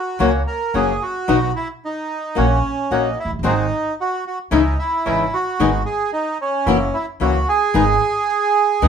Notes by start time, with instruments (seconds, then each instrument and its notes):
Already playing: bandoneon F#4
0.19 upright bass C#2, nylon-string guitar C#3 F#3 A#3 C#4 F#4, bandoneon A#3 C#4 F#4
0.47 bandoneon A#4
0.73 upright bass F#1, nylon-string guitar C#3 F#3 A#3 C#4 F#4, bandoneon A#3 C#4 F#4 G#4
1.02 bandoneon F#4
1.27 upright bass B1, nylon-string guitar B2 F#3 B3 D#4 F#4, bandoneon B3 D#4 F#4
1.56 bandoneon E4
1.85 bandoneon D#4
2.35 upright bass A#1, nylon-string guitar A#3 C#4 F#4, bandoneon A#3 C#4 F#4
2.91 upright bass A#1, nylon-string guitar A#3 C#4 F#4, bandoneon A#3 C#4 D#4 F#4
3.19 bandoneon E4
3.25 upright bass F1
3.32 upright bass F#1
3.39 upright bass G1, nylon-string guitar D#3
3.44 upright bass G#1, nylon-string guitar F#3 C4 D#4 G#4, bandoneon G#3 C4 D#4 F#4
4.01 bandoneon F#4
4.27 bandoneon F#4
4.51 upright bass C#2, nylon-string guitar C#3 E3 G#3 D#4 E4, bandoneon C#4 D#4 E4
4.79 bandoneon E4
5.05 upright bass G#1, nylon-string guitar C#3 E3 G#3 D#4 E4, bandoneon C#4 D#4 E4
5.34 bandoneon F#4
5.59 upright bass G#1, nylon-string guitar D#3 G#3 B3 D#4 G#4, bandoneon G#3 B3 D#4
5.86 bandoneon G#4
6.13 bandoneon D#4
6.41 bandoneon C#4
6.65 upright bass F#1, nylon-string guitar C#3 E3 A#3 C#4 F#4, bandoneon F#3 A#3 E4
6.94 bandoneon E4
7.20 upright bass C#2, nylon-string guitar C#3 E3 A#3 C#4 F#4, bandoneon F#3 A#3 E4 F#4
7.49 bandoneon G#4
7.74 upright bass G#1, nylon-string guitar D#3 G#3 B3 D#4 G#4, bandoneon G#3 B3 D#4
8.81 upright bass D#2, nylon-string guitar D#3 G#3 B3 D#4 G#4, bandoneon G#3 B3 D#4